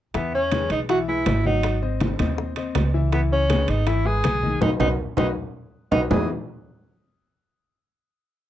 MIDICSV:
0, 0, Header, 1, 5, 480
1, 0, Start_track
1, 0, Key_signature, 4, "major"
1, 0, Tempo, 373134
1, 184, Time_signature, 4, 2, 24, 8
1, 10932, End_track
2, 0, Start_track
2, 0, Title_t, "Grand piano"
2, 0, Program_c, 0, 0
2, 183, Note_on_c, 0, 52, 71
2, 185, Note_on_c, 0, 64, 70
2, 189, Note_on_c, 0, 76, 69
2, 577, Note_off_c, 0, 52, 0
2, 579, Note_off_c, 0, 64, 0
2, 581, Note_off_c, 0, 76, 0
2, 663, Note_on_c, 0, 56, 59
2, 668, Note_on_c, 0, 68, 58
2, 675, Note_on_c, 0, 71, 60
2, 1057, Note_off_c, 0, 56, 0
2, 1060, Note_off_c, 0, 68, 0
2, 1064, Note_off_c, 0, 71, 0
2, 1146, Note_on_c, 0, 52, 81
2, 1149, Note_on_c, 0, 64, 78
2, 1150, Note_on_c, 0, 76, 83
2, 1342, Note_off_c, 0, 52, 0
2, 1344, Note_off_c, 0, 64, 0
2, 1345, Note_off_c, 0, 76, 0
2, 1388, Note_on_c, 0, 56, 67
2, 1392, Note_on_c, 0, 68, 73
2, 1398, Note_on_c, 0, 71, 64
2, 1780, Note_off_c, 0, 56, 0
2, 1782, Note_off_c, 0, 68, 0
2, 1786, Note_off_c, 0, 71, 0
2, 1870, Note_on_c, 0, 54, 68
2, 1876, Note_on_c, 0, 66, 75
2, 1881, Note_on_c, 0, 78, 73
2, 2260, Note_off_c, 0, 54, 0
2, 2264, Note_off_c, 0, 66, 0
2, 2267, Note_off_c, 0, 78, 0
2, 2341, Note_on_c, 0, 60, 67
2, 2349, Note_on_c, 0, 72, 69
2, 2350, Note_on_c, 0, 75, 70
2, 2735, Note_off_c, 0, 60, 0
2, 2740, Note_off_c, 0, 72, 0
2, 2740, Note_off_c, 0, 75, 0
2, 2820, Note_on_c, 0, 60, 73
2, 2826, Note_on_c, 0, 72, 69
2, 2830, Note_on_c, 0, 75, 75
2, 3214, Note_off_c, 0, 60, 0
2, 3217, Note_off_c, 0, 72, 0
2, 3220, Note_off_c, 0, 75, 0
2, 3302, Note_on_c, 0, 60, 69
2, 3305, Note_on_c, 0, 72, 70
2, 3308, Note_on_c, 0, 75, 70
2, 3694, Note_off_c, 0, 60, 0
2, 3696, Note_off_c, 0, 72, 0
2, 3698, Note_off_c, 0, 75, 0
2, 3782, Note_on_c, 0, 52, 72
2, 3785, Note_on_c, 0, 64, 81
2, 3791, Note_on_c, 0, 76, 77
2, 3978, Note_off_c, 0, 52, 0
2, 3979, Note_off_c, 0, 64, 0
2, 3983, Note_off_c, 0, 76, 0
2, 4017, Note_on_c, 0, 52, 71
2, 4020, Note_on_c, 0, 64, 72
2, 4025, Note_on_c, 0, 76, 68
2, 4411, Note_off_c, 0, 52, 0
2, 4413, Note_off_c, 0, 64, 0
2, 4416, Note_off_c, 0, 76, 0
2, 4493, Note_on_c, 0, 56, 63
2, 4499, Note_on_c, 0, 68, 68
2, 4500, Note_on_c, 0, 71, 66
2, 4888, Note_off_c, 0, 56, 0
2, 4891, Note_off_c, 0, 68, 0
2, 4892, Note_off_c, 0, 71, 0
2, 4975, Note_on_c, 0, 52, 79
2, 4979, Note_on_c, 0, 64, 82
2, 4986, Note_on_c, 0, 76, 88
2, 5172, Note_off_c, 0, 52, 0
2, 5175, Note_off_c, 0, 64, 0
2, 5179, Note_off_c, 0, 76, 0
2, 5210, Note_on_c, 0, 56, 67
2, 5217, Note_on_c, 0, 68, 72
2, 5220, Note_on_c, 0, 71, 69
2, 5606, Note_off_c, 0, 56, 0
2, 5610, Note_off_c, 0, 68, 0
2, 5611, Note_off_c, 0, 71, 0
2, 5695, Note_on_c, 0, 51, 78
2, 5700, Note_on_c, 0, 63, 73
2, 5701, Note_on_c, 0, 75, 72
2, 5892, Note_off_c, 0, 51, 0
2, 5895, Note_off_c, 0, 63, 0
2, 5895, Note_off_c, 0, 75, 0
2, 5926, Note_on_c, 0, 66, 80
2, 5928, Note_on_c, 0, 63, 88
2, 5929, Note_on_c, 0, 71, 84
2, 6083, Note_off_c, 0, 66, 0
2, 6084, Note_off_c, 0, 63, 0
2, 6085, Note_off_c, 0, 71, 0
2, 6170, Note_on_c, 0, 66, 86
2, 6170, Note_on_c, 0, 71, 87
2, 6171, Note_on_c, 0, 63, 85
2, 6325, Note_off_c, 0, 66, 0
2, 6326, Note_off_c, 0, 63, 0
2, 6326, Note_off_c, 0, 71, 0
2, 6654, Note_on_c, 0, 66, 95
2, 6658, Note_on_c, 0, 63, 90
2, 6658, Note_on_c, 0, 71, 94
2, 6808, Note_off_c, 0, 66, 0
2, 6810, Note_off_c, 0, 63, 0
2, 6810, Note_off_c, 0, 71, 0
2, 7612, Note_on_c, 0, 71, 82
2, 7613, Note_on_c, 0, 63, 92
2, 7614, Note_on_c, 0, 66, 86
2, 7766, Note_off_c, 0, 71, 0
2, 7767, Note_off_c, 0, 63, 0
2, 7767, Note_off_c, 0, 66, 0
2, 7846, Note_on_c, 0, 52, 78
2, 7850, Note_on_c, 0, 59, 66
2, 7853, Note_on_c, 0, 63, 74
2, 7855, Note_on_c, 0, 64, 70
2, 7858, Note_on_c, 0, 68, 78
2, 7859, Note_on_c, 0, 71, 92
2, 8073, Note_off_c, 0, 52, 0
2, 8075, Note_off_c, 0, 59, 0
2, 8077, Note_off_c, 0, 63, 0
2, 8078, Note_off_c, 0, 64, 0
2, 8079, Note_off_c, 0, 68, 0
2, 8080, Note_off_c, 0, 71, 0
2, 10932, End_track
3, 0, Start_track
3, 0, Title_t, "Tenor saxophone"
3, 0, Program_c, 1, 66
3, 204, Note_on_c, 1, 59, 74
3, 418, Note_off_c, 1, 59, 0
3, 449, Note_on_c, 1, 61, 90
3, 884, Note_off_c, 1, 61, 0
3, 925, Note_on_c, 1, 63, 85
3, 1028, Note_off_c, 1, 63, 0
3, 1159, Note_on_c, 1, 66, 93
3, 1264, Note_off_c, 1, 66, 0
3, 1397, Note_on_c, 1, 64, 95
3, 1837, Note_off_c, 1, 64, 0
3, 1881, Note_on_c, 1, 63, 90
3, 2319, Note_off_c, 1, 63, 0
3, 4031, Note_on_c, 1, 59, 83
3, 4136, Note_off_c, 1, 59, 0
3, 4276, Note_on_c, 1, 61, 94
3, 4749, Note_on_c, 1, 63, 84
3, 4768, Note_off_c, 1, 61, 0
3, 4985, Note_on_c, 1, 64, 96
3, 5005, Note_off_c, 1, 63, 0
3, 5229, Note_on_c, 1, 68, 110
3, 5248, Note_off_c, 1, 64, 0
3, 5936, Note_off_c, 1, 68, 0
3, 5944, Note_on_c, 1, 63, 88
3, 6056, Note_off_c, 1, 63, 0
3, 6179, Note_on_c, 1, 63, 89
3, 6293, Note_off_c, 1, 63, 0
3, 6667, Note_on_c, 1, 63, 78
3, 6778, Note_off_c, 1, 63, 0
3, 7612, Note_on_c, 1, 63, 90
3, 7728, Note_off_c, 1, 63, 0
3, 7853, Note_on_c, 1, 68, 80
3, 8077, Note_off_c, 1, 68, 0
3, 10932, End_track
4, 0, Start_track
4, 0, Title_t, "Upright bass"
4, 0, Program_c, 2, 32
4, 185, Note_on_c, 2, 40, 90
4, 855, Note_off_c, 2, 40, 0
4, 902, Note_on_c, 2, 35, 80
4, 1572, Note_off_c, 2, 35, 0
4, 1625, Note_on_c, 2, 32, 84
4, 2747, Note_off_c, 2, 32, 0
4, 2827, Note_on_c, 2, 39, 90
4, 3493, Note_off_c, 2, 39, 0
4, 3545, Note_on_c, 2, 37, 97
4, 4665, Note_off_c, 2, 37, 0
4, 4736, Note_on_c, 2, 32, 84
4, 5405, Note_off_c, 2, 32, 0
4, 5453, Note_on_c, 2, 35, 85
4, 5900, Note_off_c, 2, 35, 0
4, 5930, Note_on_c, 2, 35, 87
4, 6111, Note_off_c, 2, 35, 0
4, 6174, Note_on_c, 2, 35, 89
4, 6353, Note_off_c, 2, 35, 0
4, 6655, Note_on_c, 2, 35, 87
4, 6833, Note_off_c, 2, 35, 0
4, 7615, Note_on_c, 2, 35, 80
4, 7793, Note_off_c, 2, 35, 0
4, 7853, Note_on_c, 2, 40, 91
4, 8077, Note_off_c, 2, 40, 0
4, 10932, End_track
5, 0, Start_track
5, 0, Title_t, "Drums"
5, 184, Note_on_c, 9, 65, 63
5, 190, Note_on_c, 9, 63, 36
5, 193, Note_on_c, 9, 60, 70
5, 313, Note_off_c, 9, 65, 0
5, 319, Note_off_c, 9, 63, 0
5, 322, Note_off_c, 9, 60, 0
5, 435, Note_on_c, 9, 63, 31
5, 564, Note_off_c, 9, 63, 0
5, 663, Note_on_c, 9, 65, 79
5, 670, Note_on_c, 9, 60, 55
5, 672, Note_on_c, 9, 63, 83
5, 792, Note_off_c, 9, 65, 0
5, 799, Note_off_c, 9, 60, 0
5, 800, Note_off_c, 9, 63, 0
5, 901, Note_on_c, 9, 65, 68
5, 907, Note_on_c, 9, 63, 32
5, 1029, Note_off_c, 9, 65, 0
5, 1036, Note_off_c, 9, 63, 0
5, 1146, Note_on_c, 9, 65, 71
5, 1148, Note_on_c, 9, 63, 30
5, 1152, Note_on_c, 9, 60, 60
5, 1275, Note_off_c, 9, 65, 0
5, 1277, Note_off_c, 9, 63, 0
5, 1281, Note_off_c, 9, 60, 0
5, 1385, Note_on_c, 9, 63, 30
5, 1514, Note_off_c, 9, 63, 0
5, 1623, Note_on_c, 9, 65, 88
5, 1623, Note_on_c, 9, 66, 66
5, 1625, Note_on_c, 9, 63, 74
5, 1628, Note_on_c, 9, 60, 55
5, 1628, Note_on_c, 9, 61, 68
5, 1751, Note_off_c, 9, 65, 0
5, 1751, Note_off_c, 9, 66, 0
5, 1754, Note_off_c, 9, 63, 0
5, 1757, Note_off_c, 9, 60, 0
5, 1757, Note_off_c, 9, 61, 0
5, 1860, Note_on_c, 9, 63, 65
5, 1989, Note_off_c, 9, 63, 0
5, 2102, Note_on_c, 9, 65, 82
5, 2113, Note_on_c, 9, 60, 69
5, 2231, Note_off_c, 9, 65, 0
5, 2241, Note_off_c, 9, 60, 0
5, 2345, Note_on_c, 9, 63, 33
5, 2350, Note_on_c, 9, 60, 31
5, 2474, Note_off_c, 9, 63, 0
5, 2478, Note_off_c, 9, 60, 0
5, 2579, Note_on_c, 9, 65, 66
5, 2588, Note_on_c, 9, 60, 54
5, 2589, Note_on_c, 9, 63, 94
5, 2708, Note_off_c, 9, 65, 0
5, 2717, Note_off_c, 9, 60, 0
5, 2718, Note_off_c, 9, 63, 0
5, 2820, Note_on_c, 9, 65, 82
5, 2826, Note_on_c, 9, 63, 87
5, 2827, Note_on_c, 9, 60, 32
5, 2949, Note_off_c, 9, 65, 0
5, 2954, Note_off_c, 9, 63, 0
5, 2956, Note_off_c, 9, 60, 0
5, 3065, Note_on_c, 9, 60, 63
5, 3068, Note_on_c, 9, 63, 32
5, 3194, Note_off_c, 9, 60, 0
5, 3197, Note_off_c, 9, 63, 0
5, 3294, Note_on_c, 9, 65, 67
5, 3308, Note_on_c, 9, 60, 36
5, 3309, Note_on_c, 9, 63, 32
5, 3423, Note_off_c, 9, 65, 0
5, 3436, Note_off_c, 9, 60, 0
5, 3438, Note_off_c, 9, 63, 0
5, 3538, Note_on_c, 9, 65, 89
5, 3538, Note_on_c, 9, 66, 71
5, 3542, Note_on_c, 9, 60, 61
5, 3542, Note_on_c, 9, 61, 73
5, 3545, Note_on_c, 9, 63, 72
5, 3667, Note_off_c, 9, 65, 0
5, 3667, Note_off_c, 9, 66, 0
5, 3670, Note_off_c, 9, 60, 0
5, 3670, Note_off_c, 9, 61, 0
5, 3674, Note_off_c, 9, 63, 0
5, 3783, Note_on_c, 9, 63, 32
5, 3912, Note_off_c, 9, 63, 0
5, 4020, Note_on_c, 9, 65, 63
5, 4024, Note_on_c, 9, 60, 68
5, 4028, Note_on_c, 9, 63, 35
5, 4148, Note_off_c, 9, 65, 0
5, 4153, Note_off_c, 9, 60, 0
5, 4156, Note_off_c, 9, 63, 0
5, 4269, Note_on_c, 9, 63, 32
5, 4398, Note_off_c, 9, 63, 0
5, 4500, Note_on_c, 9, 65, 90
5, 4504, Note_on_c, 9, 60, 57
5, 4504, Note_on_c, 9, 63, 93
5, 4628, Note_off_c, 9, 65, 0
5, 4633, Note_off_c, 9, 60, 0
5, 4633, Note_off_c, 9, 63, 0
5, 4734, Note_on_c, 9, 65, 69
5, 4745, Note_on_c, 9, 63, 35
5, 4863, Note_off_c, 9, 65, 0
5, 4874, Note_off_c, 9, 63, 0
5, 4974, Note_on_c, 9, 65, 68
5, 4979, Note_on_c, 9, 60, 65
5, 4989, Note_on_c, 9, 63, 33
5, 5103, Note_off_c, 9, 65, 0
5, 5108, Note_off_c, 9, 60, 0
5, 5118, Note_off_c, 9, 63, 0
5, 5228, Note_on_c, 9, 63, 29
5, 5357, Note_off_c, 9, 63, 0
5, 5454, Note_on_c, 9, 65, 91
5, 5463, Note_on_c, 9, 63, 73
5, 5464, Note_on_c, 9, 60, 60
5, 5464, Note_on_c, 9, 61, 72
5, 5582, Note_off_c, 9, 65, 0
5, 5592, Note_off_c, 9, 60, 0
5, 5592, Note_off_c, 9, 61, 0
5, 5592, Note_off_c, 9, 63, 0
5, 5702, Note_on_c, 9, 63, 65
5, 5831, Note_off_c, 9, 63, 0
5, 5936, Note_on_c, 9, 65, 86
5, 5939, Note_on_c, 9, 61, 96
5, 5941, Note_on_c, 9, 64, 104
5, 6064, Note_off_c, 9, 65, 0
5, 6068, Note_off_c, 9, 61, 0
5, 6069, Note_off_c, 9, 64, 0
5, 6173, Note_on_c, 9, 65, 101
5, 6181, Note_on_c, 9, 61, 90
5, 6181, Note_on_c, 9, 64, 95
5, 6302, Note_off_c, 9, 65, 0
5, 6309, Note_off_c, 9, 64, 0
5, 6310, Note_off_c, 9, 61, 0
5, 6649, Note_on_c, 9, 65, 90
5, 6655, Note_on_c, 9, 64, 95
5, 6662, Note_on_c, 9, 61, 97
5, 6778, Note_off_c, 9, 65, 0
5, 6783, Note_off_c, 9, 64, 0
5, 6791, Note_off_c, 9, 61, 0
5, 7612, Note_on_c, 9, 65, 98
5, 7613, Note_on_c, 9, 64, 88
5, 7617, Note_on_c, 9, 61, 93
5, 7741, Note_off_c, 9, 65, 0
5, 7742, Note_off_c, 9, 64, 0
5, 7746, Note_off_c, 9, 61, 0
5, 7855, Note_on_c, 9, 64, 98
5, 7857, Note_on_c, 9, 66, 93
5, 7859, Note_on_c, 9, 61, 93
5, 7984, Note_off_c, 9, 64, 0
5, 7985, Note_off_c, 9, 66, 0
5, 7988, Note_off_c, 9, 61, 0
5, 10932, End_track
0, 0, End_of_file